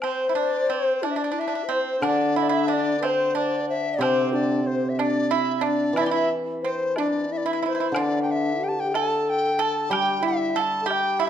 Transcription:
0.00 C4 C5, high woodblock
0.05 C5
0.29 E4
0.35 D4 D5
0.70 C4
0.74 C5
1.02 D4 E4 D5, high woodblock, low woodblock
1.11 E5
1.16 D4 D5
1.24 D4
1.32 D4 E4
1.39 D4 E5
1.48 D4
1.55 D4
1.64 C5
1.69 C4 C5
2.00 D3 D4, high woodblock
2.07 D5
2.36 E4 E5
2.43 D5
2.49 E4 E5
2.68 D4
2.73 D5
2.99 C4 C5, high woodblock, low woodblock
3.06 C5
3.35 D4 D5
3.69 E5
3.92 D5
3.98 C3 C4 C5 D5, high woodblock
4.03 C5
4.33 D4 D5
4.64 C5 D5
4.69 C5
4.89 E5
4.99 D4 D5, high woodblock, low woodblock
5.31 E4 E5
5.55 E5
5.61 D4 D5
5.93 E3 E4, high woodblock
5.97 E4 E5
6.01 D5
6.06 G4
6.11 E4 E5
6.61 C4 C5
6.65 C5
6.96 D4 D5, high woodblock, low woodblock
7.29 E4 E5
7.37 D5
7.46 E4 E5
7.53 E4
7.62 E4
7.68 C5
7.75 E4
7.80 E4
7.92 D3, high woodblock
7.96 C4 D4 D5
8.13 C#4
8.22 D4 G5
8.31 E5
8.62 G4 G5
8.69 A5
8.80 G5
8.93 A4, high woodblock, low woodblock
8.97 A5
9.29 G5
9.59 A4 A5
9.83 A5
9.90 G3 G4 G5, high woodblock
10.23 E4 E5
10.56 A4
10.61 A5
10.81 A4
10.86 G4
10.90 G5, high woodblock, low woodblock
11.20 E4
11.24 E5

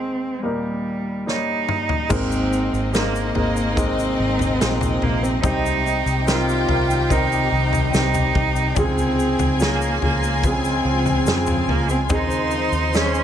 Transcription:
Already playing: D#2 D#3 G#3 C4 D#4 C5
0.38 G#3
0.43 D#2 A#2 G3 A#3 D#4 A#4
1.26 G3 A#3 D#4 C#5, snare
1.69 mid tom
1.89 floor tom
2.09 G#1 G#2 C3 D#3 G#3 A#3 C4 D#4 A#4 D#5, kick, floor tom, crash, shaker
2.32 shaker
2.53 shaker
2.73 G#1, shaker
2.93 G#3 A#3 C4 D#4 A#4, snare, shaker
3.15 shaker
3.35 G#1 G#3 A#3 C4 D#4 A#4, floor tom
3.57 shaker
3.76 G#3 A#3 C4 D#4 A#4, kick, floor tom, shaker
3.99 shaker
4.19 G#1
4.39 floor tom, shaker
4.60 A#1 G#3 A#3 C4 D#4 F4, snare, shaker
4.81 floor tom, shaker
5.02 A#1 A#3, floor tom
5.22 C4, shaker
5.42 C2 C3 D#3 G3 C4 D#4 G4 G5, kick, floor tom, shaker
5.66 shaker
5.87 shaker
6.06 C2, shaker
6.26 C4 D#4 F4 A#4, snare, shaker
6.49 shaker
6.68 C2 C4 D#4 A#4, floor tom
6.91 shaker
7.09 C4 D#4 A#4, kick, floor tom, shaker
7.32 shaker
7.52 C2
7.73 floor tom, shaker
7.92 C2 C4 D#4 G4, snare, shaker
8.14 floor tom, shaker
8.35 C2, kick, floor tom
8.56 shaker
8.76 C#2 C#3 F3 G#3 C4 F4 G#4 G#5, kick, floor tom, shaker
8.98 shaker
9.19 shaker
9.39 C#2, floor tom, shaker
9.60 A#3 C#4 F4 G#4, snare, shaker
9.82 shaker
10.01 C#2 A#3 C#4 F4 G#4, floor tom
10.23 shaker
10.44 C#3 C4 F4 G#4, kick, floor tom, shaker
10.64 shaker
10.85 C#2
11.06 floor tom, shaker
11.26 F2 C#3 F4 G#4, snare, shaker
11.46 floor tom, shaker
11.67 C#2 A#3, floor tom
11.89 C4, shaker
12.09 D#2 D#3 G#3 C4 D#4 G#4 C5 C6, kick, floor tom, shaker
12.31 shaker
12.51 shaker
12.72 D#2, shaker
12.93 C#4 D#4 G#4 C5, snare, shaker
13.14 shaker

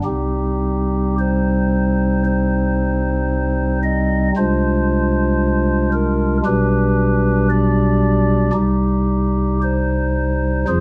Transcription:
0.04 C2 C3 G3 C4 D#4 G4
1.19 C5
2.25 C5
3.83 D#5
4.37 C2 C3 G#3 D4 F4 C5
5.93 A#4
6.45 B1 B2 G3 D4 G4 B4
7.50 D5
8.53 C2 C3 G3 D#4 G4
9.63 C5
10.68 F1 F2 F3 F4 G#4 C5

